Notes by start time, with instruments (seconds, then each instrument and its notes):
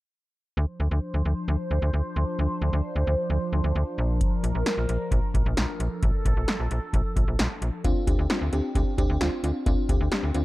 0.57 fm bass D2, analog synth pad F3 D4 C5
0.80 fm bass D2
0.91 fm bass D2
1.14 fm bass D2
1.25 fm bass D2
1.48 fm bass D2
1.71 fm bass D2
1.82 fm bass D2
1.93 fm bass D2
2.16 fm bass D2
2.39 fm bass D2
2.62 fm bass D2
2.73 fm bass D2
2.96 fm bass D2
3.07 fm bass D2
3.30 fm bass D2
3.53 fm bass D2
3.64 fm bass D2
3.75 fm bass D2
3.98 fm bass A#1, analog synth pad A#4
4.21 kick, closed hi-hat
4.43 fm bass A#1, closed hi-hat
4.55 fm bass A#1
4.66 snare, closed hi-hat
4.78 fm bass A#1
4.89 fm bass A#1, closed hi-hat
5.11 fm bass A#1, kick, closed hi-hat
5.34 fm bass A#1, kick, closed hi-hat
5.46 fm bass A#1
5.57 fm bass A#1, snare, closed hi-hat
5.80 fm bass A#1, analog synth pad A4, closed hi-hat
6.03 fm bass A#1, kick, closed hi-hat
6.25 fm bass A#1, kick, closed hi-hat
6.37 fm bass A#1
6.48 snare, closed hi-hat
6.60 fm bass A#1
6.71 fm bass A#1, closed hi-hat
6.93 fm bass A#1, kick, closed hi-hat
7.16 fm bass A#1, kick, closed hi-hat
7.28 fm bass A#1
7.39 fm bass A#1, snare, closed hi-hat
7.62 fm bass A#1, closed hi-hat
7.84 fm bass D2, fm electric piano C4 D4 F4, kick, closed hi-hat
8.07 fm bass D2, fm electric piano C4 D4 G4, kick, closed hi-hat
8.19 fm bass D2
8.30 fm electric piano C4 D4 F4, snare, closed hi-hat
8.41 fm bass D2
8.53 fm bass D2, fm electric piano C4 D4 G4, closed hi-hat
8.75 fm bass D2, fm electric piano C4 D4 G4, kick, closed hi-hat
8.98 fm bass D2, fm electric piano C4 D4 G4, kick, closed hi-hat
9.09 fm bass D2
9.21 fm bass D2, fm electric piano C4 D4 F4, snare, closed hi-hat
9.44 fm bass D2, fm electric piano C4 D4 F4, closed hi-hat
9.66 fm bass D2, fm electric piano C4 D4 F4, kick, closed hi-hat
9.89 fm bass D2, fm electric piano C4 D4 G4, kick, closed hi-hat
10.00 fm bass D2
10.12 fm electric piano C4 D4 G4, snare, closed hi-hat
10.23 fm bass D2
10.34 fm bass D2, fm electric piano C4 D4 F4, closed hi-hat